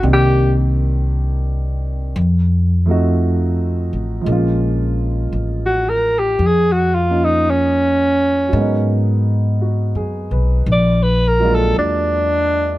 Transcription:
0.03 C2 D#3 A#3 C4 D4 G4
0.13 G4
2.16 F2
2.86 F3 A3 C4 D#4
2.91 F#4
3.93 A1
4.21 F3 G#3
4.26 A#1 A#3 C#4
4.32 F4
5.32 A1
5.66 F#4
5.89 A#4
6.19 G4
6.39 F2
6.47 G#4
6.72 F#4
6.95 F4
7.09 A#3 C#4 D#4 F4
7.24 D#4
7.50 C#4
8.49 F#3 G#3
8.53 G#2 B3 A#4
8.59 D#4
9.62 F#4
9.95 F#2 G#4
10.31 B1 B4
10.66 A#1
10.72 D5
11.03 B4
11.28 A#4
11.40 F#3 G#3 A#3 D4
11.45 F4
11.55 A4
11.75 E2 D4

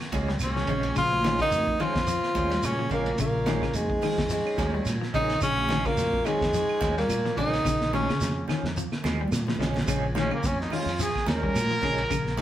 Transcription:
0.01 snare, claves
0.12 C#2 F3 G#3 C#4, kick, snare, ride bell, high conga, shekere
0.29 G3, snare
0.39 C2 C#4, snare, ride bell, high conga, claves, shekere
0.44 C#3
0.56 F3, snare
0.67 A#1 C#3 F3 G#3 C#4, kick, ride bell, low conga, shekere
0.83 ride bell, high conga
0.96 A#1 C#3 F3 F4, kick, ride bell, claves, shekere
1.13 high conga
1.24 D#3 F3 G#3 C#4, snare, ride bell, high conga, shekere
1.40 C#3 D#3 D#4, kick, ride bell, claves
1.51 F2, ride bell, high conga, shekere
1.67 kick, high conga
1.79 D#3 F3 G#3 C#4 F4, muted fingered electric bass stroke, ride bell, low conga, claves, shekere
1.95 F2, kick, snare, ride bell
2.07 F3, ride bell, shekere
2.23 snare, claves
2.35 D#2 F3 G#3 C#4, kick, ride bell, high conga, shekere
2.50 G3, snare, ride bell, high conga
2.63 A#2 C#3 C#4, ride bell, high conga, claves, shekere
2.79 F3
2.90 A#1 A#2 C#3 F3 G#3 A#3 C#4, kick, ride bell, low conga, shekere
3.06 ride bell, high conga
3.18 A#1 A#2 C#3 A#3, kick, ride bell, claves, shekere
3.46 D#3 F3 G#3 C#4, snare, ride bell, high conga, shekere
3.62 C#3, kick, snare, claves
3.73 F2 G#2 G#3, ride bell, high conga, shekere
3.90 kick
4.02 D#3 F3 G#3, muted fingered electric bass stroke, open hi-hat, low conga, claves, shekere
4.18 F2, kick, snare, ride bell
4.29 G#2 F3 G#3, ride bell, shekere
4.45 G#3 C#4, claves
4.57 D#2 F3 G#3 C#4, kick, snare, ride bell, high conga, shekere
4.73 G3 G#3 C#4, high conga
4.85 A#2, snare, ride bell, high conga, claves, shekere
5.01 F3, snare
5.13 A#1 C#3 D#3 F3 G#3 C#4 D#4, kick, ride bell, low conga, shekere
5.30 snare, ride bell
5.41 A#1 C#3 C#4, kick, ride bell, claves, shekere
5.57 high conga
5.69 D#3 F3 G#3 C#4, snare, ride bell, high conga, shekere
5.84 A#2 C#3 A#3, kick, ride bell, low conga, claves
5.97 F2, ride bell, high conga, shekere
6.13 kick, high conga
6.25 G#2 D#3 F3 G#3 C#4, muted clean electric guitar stroke, muted fingered electric bass stroke, ride bell, low conga, claves, shekere
6.41 F2, kick, snare, ride bell
6.53 F3, ride bell, shekere
6.69 claves
6.80 D#2 F3 G#3 C#4, kick, snare, ride bell, high conga, shekere
6.98 A#2 G3 A#3, snare, ride bell
7.08 A#2, ride bell, high conga, claves, shekere
7.25 F3, snare
7.36 A#1 C#3 D#3 F3 G#3 C#4 D#4, kick, ride bell, low conga, shekere
7.53 snare, ride bell
7.65 A#1 C#3, kick, snare, claves, shekere
7.81 snare
7.92 C#3 D#3 F3 G#3 C#4, high conga, shekere
8.09 C#3, snare, claves
8.21 F2, snare, high conga, shekere
8.48 D#3 F3 C#4, muted clean electric guitar stroke, muted fingered electric bass stroke, snare, low conga, claves, shekere
8.63 F2, snare
8.77 F3, shekere
8.92 snare, claves
9.04 D#2 F3 G#3, snare, high conga, shekere
9.19 G3, high conga
9.28 high conga
9.32 A#2, snare, claves, shekere
9.36 high conga
9.47 F3, snare, high conga
9.55 A#1, low conga
9.59 C#3 F3 G#3 C#4, snare, shekere
9.64 low conga
9.74 snare, low conga
9.82 low conga
9.87 A#1 C#3 F3 G#3 C#4, kick, ride bell, claves, shekere
10.15 D#3 F3 G#3 C#4, snare, ride bell, high conga, shekere
10.31 C#3 A#3, claves
10.43 F2 C#4, kick, ride bell, high conga, shekere
10.59 D#4, snare, high conga
10.70 D#3 F3 G#3 C#4 F4, muted fingered electric bass stroke, open hi-hat, low conga, claves, shekere
10.86 F2, ride bell
10.99 F3 G#4, ride bell, shekere
11.16 kick, snare, claves
11.26 D#2 F3 G#3 C#4 A#4, snare, ride bell, high conga, shekere
11.42 G3 G#3 C#4, kick
11.55 A#2, ride bell, high conga, claves, shekere
11.71 F3
11.82 A#1 C#3 F3 G#3 C#4, kick, ride bell, low conga, shekere
11.98 ride bell
12.10 A#1 C#3, kick, ride bell, claves, shekere
12.27 snare
12.37 F3, ride bell, high conga

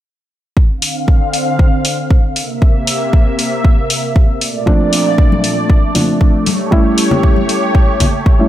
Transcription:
0.57 D3 C4 F5, kick
0.82 open hi-hat
1.08 kick
1.33 open hi-hat
1.59 kick
1.85 open hi-hat
2.11 kick
2.36 C3 A#3 E5, open hi-hat
2.62 kick
2.87 open hi-hat
3.13 kick
3.39 open hi-hat
3.65 kick
3.90 open hi-hat
4.16 kick
4.41 A#2 A3 D5, open hi-hat
4.66 F3 A3 C4 D4, kick
4.93 open hi-hat
5.18 kick
5.32 high conga
5.44 open hi-hat
5.70 kick
5.95 F3 A3 C4 D4, open hi-hat, low conga
6.21 kick
6.46 G4 C#5, open hi-hat, high conga
6.71 G3 A3 C#4 E4, kick
6.98 open hi-hat
7.11 low conga
7.23 kick
7.36 high conga
7.49 open hi-hat
7.75 kick
8.00 kick, open hi-hat, low conga
8.26 kick
8.39 G3 A3 C#4 E4

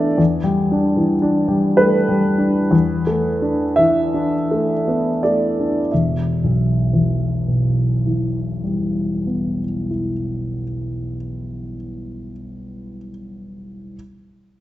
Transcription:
Already playing: E2 E3 A3 B3 D4 D5 E5
0.18 E2
0.44 G3
0.72 D4
0.97 E3
1.22 D4
1.48 G3
1.77 A3 B4
2.09 G3
2.38 D4
2.71 E2
3.07 A3
3.42 D4
3.76 E3 E5
4.14 D4
4.51 A3
4.88 B3
5.23 A3 D5
5.60 D4
5.92 E1 E5
6.44 B1
6.93 E2
7.48 B2
8.06 E3
8.64 G3
9.27 B3
9.91 E4

